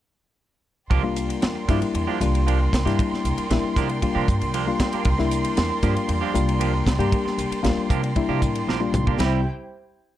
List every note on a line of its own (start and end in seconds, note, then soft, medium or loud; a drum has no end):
0.90 1.03 C2 loud
0.90 1.04 F3 medium
0.90 1.03 A#3 medium
0.90 1.03 D4 medium
0.90 1.02 G4 medium
0.90 9.15 A#4 medium
0.90 9.15 D5 medium
0.90 9.15 G5 medium
0.90 9.15 C6 medium
0.90 kick loud
0.90 ride medium
1.03 1.64 G3 medium
1.03 1.64 A#3 medium
1.03 1.64 D4 medium
1.03 1.64 F4 medium
1.03 muted clean electric guitar stroke soft
1.16 hi-hat pedal medium
1.16 ride medium
1.29 muted clean electric guitar stroke soft
1.29 ride medium
1.42 1.55 E2 medium
1.42 muted clean electric guitar stroke soft
1.42 snare loud
1.42 ride medium
1.55 muted clean electric guitar stroke soft
1.68 1.81 G2 medium
1.68 1.82 F3 medium
1.68 2.17 G3 medium
1.68 1.81 A#3 medium
1.68 2.17 A#3 medium
1.68 1.80 D4 medium
1.68 2.17 D4 medium
1.68 2.18 E4 medium
1.68 1.80 G4 medium
1.68 kick medium
1.68 snare soft
1.68 hi-hat pedal medium
1.68 ride medium
1.81 muted clean electric guitar stroke soft
1.81 muted upright bass stroke soft
1.81 ride medium
1.94 2.07 E2 medium
1.94 muted clean electric guitar stroke soft
1.94 ride medium
2.07 2.19 F3 medium
2.07 2.19 A#3 medium
2.07 2.20 D4 medium
2.07 2.20 G4 medium
2.07 muted upright bass stroke soft
2.20 2.69 C2 medium
2.20 2.81 G3 medium
2.20 2.81 A#3 medium
2.20 2.81 D4 medium
2.20 2.81 F4 medium
2.20 muted clean electric guitar stroke soft
2.20 hi-hat pedal medium
2.20 ride medium
2.35 ride medium
2.46 2.60 F3 soft
2.46 2.59 A#3 medium
2.46 2.59 D4 medium
2.46 2.58 G4 medium
2.46 ride medium
2.60 muted clean electric guitar stroke soft
2.73 2.85 C2 medium
2.73 kick medium
2.73 snare loud
2.73 hi-hat pedal medium
2.73 ride medium
2.85 2.98 G2 medium
2.85 3.46 G3 medium
2.85 3.46 A#3 medium
2.85 3.02 A#3 soft
2.85 3.46 D4 medium
2.85 3.01 D4 soft
2.85 3.46 E4 medium
2.85 3.01 G4 medium
2.85 snare soft
2.85 ride medium
2.99 kick medium
2.99 ride medium
3.12 muted clean electric guitar stroke soft
3.12 muted upright bass stroke soft
3.12 snare soft
3.25 3.37 C2 medium
3.25 hi-hat pedal medium
3.25 ride medium
3.38 muted clean electric guitar stroke soft
3.38 ride medium
3.50 3.63 A#1 loud
3.50 3.99 G3 medium
3.50 3.99 A#3 medium
3.50 3.99 D4 medium
3.50 3.99 E4 medium
3.50 muted clean electric guitar stroke soft
3.50 snare medium
3.50 ride medium
3.64 muted upright bass stroke soft
3.64 muted clean electric guitar stroke soft
3.76 4.01 C3 medium
3.76 3.89 F3 medium
3.76 3.89 A#3 medium
3.76 3.88 D4 medium
3.76 3.88 G4 medium
3.76 kick medium
3.76 snare soft
3.76 hi-hat pedal medium
3.76 ride medium
3.89 muted clean electric guitar stroke soft
3.89 ride medium
4.02 4.62 G3 medium
4.02 4.62 A#3 medium
4.02 4.63 D4 medium
4.02 4.62 F4 medium
4.02 muted clean electric guitar stroke soft
4.02 kick medium
4.02 ride medium
4.15 4.27 C3 medium
4.15 4.27 F3 medium
4.15 4.27 A#3 medium
4.15 4.27 D4 medium
4.15 4.28 G4 medium
4.28 4.40 G2 loud
4.28 muted clean electric guitar stroke soft
4.28 kick medium
4.28 hi-hat pedal medium
4.28 ride medium
4.41 4.65 C2 medium
4.41 ride medium
4.54 4.67 F3 medium
4.54 4.67 A#3 medium
4.54 4.66 D4 medium
4.54 4.66 G4 medium
4.54 ride medium
4.67 5.15 G3 medium
4.67 5.15 A#3 medium
4.67 5.15 D4 medium
4.67 5.15 F4 medium
4.67 muted clean electric guitar stroke soft
4.80 kick medium
4.80 snare loud
4.80 hi-hat pedal medium
4.80 ride medium
4.93 5.09 A#3 soft
4.93 5.09 D4 soft
4.93 5.08 G4 medium
4.93 muted upright bass stroke soft
4.93 ride medium
5.05 5.18 C2 loud
5.05 kick loud
5.05 ride medium
5.18 5.43 C2 medium
5.18 5.79 G3 medium
5.18 5.78 A#3 medium
5.18 5.79 D4 medium
5.18 5.79 E4 medium
5.18 muted clean electric guitar stroke medium
5.18 snare soft
5.31 hi-hat pedal medium
5.31 ride medium
5.44 muted clean electric guitar stroke soft
5.44 ride medium
5.57 5.70 E2 medium
5.57 muted clean electric guitar stroke soft
5.57 snare medium
5.57 ride medium
5.70 muted clean electric guitar stroke soft
5.83 5.95 G2 medium
5.83 5.96 F3 medium
5.83 6.31 G3 medium
5.83 6.31 A#3 medium
5.83 5.95 A#3 medium
5.83 6.31 D4 medium
5.83 5.95 D4 medium
5.83 6.31 F4 medium
5.83 5.95 G4 medium
5.83 kick medium
5.83 snare soft
5.83 hi-hat pedal medium
5.83 ride medium
5.96 muted clean electric guitar stroke soft
5.96 muted upright bass stroke soft
5.96 ride medium
6.09 6.21 E2 medium
6.09 muted clean electric guitar stroke soft
6.09 ride medium
6.21 6.33 F3 medium
6.21 6.33 A#3 medium
6.21 6.34 D4 medium
6.21 6.34 G4 medium
6.21 muted upright bass stroke soft
6.34 6.83 C2 medium
6.34 6.94 G3 medium
6.34 6.94 A#3 medium
6.34 6.95 D4 medium
6.34 6.95 F4 medium
6.34 muted clean electric guitar stroke soft
6.34 hi-hat pedal medium
6.34 ride medium
6.49 ride medium
6.59 6.73 F3 medium
6.59 6.73 A#3 medium
6.59 6.73 D4 medium
6.59 6.72 G4 medium
6.59 ride medium
6.74 muted clean electric guitar stroke medium
6.87 6.98 C2 medium
6.87 kick medium
6.87 snare loud
6.87 hi-hat pedal medium
6.87 ride medium
6.99 7.11 G2 medium
6.99 7.59 G3 medium
6.99 7.59 A#3 medium
6.99 7.15 A#3 soft
6.99 7.59 D4 medium
6.99 7.15 D4 soft
6.99 7.15 G4 medium
6.99 7.59 G4 loud
6.99 ride medium
7.12 kick medium
7.12 ride medium
7.25 muted upright bass stroke soft
7.25 muted clean electric guitar stroke soft
7.25 snare soft
7.37 7.50 C2 medium
7.37 hi-hat pedal medium
7.37 ride medium
7.51 muted upright bass stroke soft
7.51 muted clean electric guitar stroke soft
7.51 ride medium
7.63 7.76 A#1 medium
7.63 8.12 G3 medium
7.63 8.12 A#3 medium
7.63 8.12 D4 medium
7.63 8.12 F4 medium
7.63 muted clean electric guitar stroke soft
7.63 snare medium
7.63 ride medium
7.77 muted clean electric guitar stroke soft
7.90 8.14 C3 medium
7.90 8.03 F3 medium
7.90 8.02 A#3 medium
7.90 8.02 D4 medium
7.90 8.02 G4 medium
7.90 kick medium
7.90 hi-hat pedal medium
7.90 ride medium
8.03 muted clean electric guitar stroke soft
8.03 ride medium
8.16 8.76 G3 medium
8.16 8.76 A#3 medium
8.16 8.76 D4 medium
8.16 8.76 E4 medium
8.16 muted clean electric guitar stroke soft
8.16 kick medium
8.16 ride medium
8.28 8.41 C3 medium
8.28 8.41 F3 medium
8.28 8.41 A#3 medium
8.28 8.41 D4 medium
8.28 8.41 G4 medium
8.42 8.65 A1 medium
8.42 kick medium
8.42 hi-hat pedal medium
8.42 ride medium
8.55 ride medium
8.67 8.91 A#1 medium
8.67 8.81 F3 medium
8.67 8.81 A#3 medium
8.67 8.80 D4 medium
8.67 8.80 G4 medium
8.67 snare medium
8.80 9.19 G3 medium
8.80 9.19 A#3 medium
8.80 9.19 D4 medium
8.80 9.19 F4 medium
8.80 muted clean electric guitar stroke soft
8.93 9.16 C2 medium
8.93 hi-hat pedal medium
8.93 mid tom medium
9.07 9.19 A#3 soft
9.07 9.20 D4 soft
9.07 9.20 G4 soft
9.07 kick medium
9.19 9.43 C2 medium
9.19 9.40 G3 medium
9.19 9.44 G3 medium
9.19 9.40 C4 medium
9.19 9.44 C4 medium
9.19 9.44 E4 medium
9.19 9.41 E4 medium
9.19 9.44 E4 medium
9.19 9.44 G4 medium
9.19 9.41 G4 medium
9.19 9.44 C5 medium
9.19 9.43 G5 medium
9.19 snare medium
9.19 ride bell medium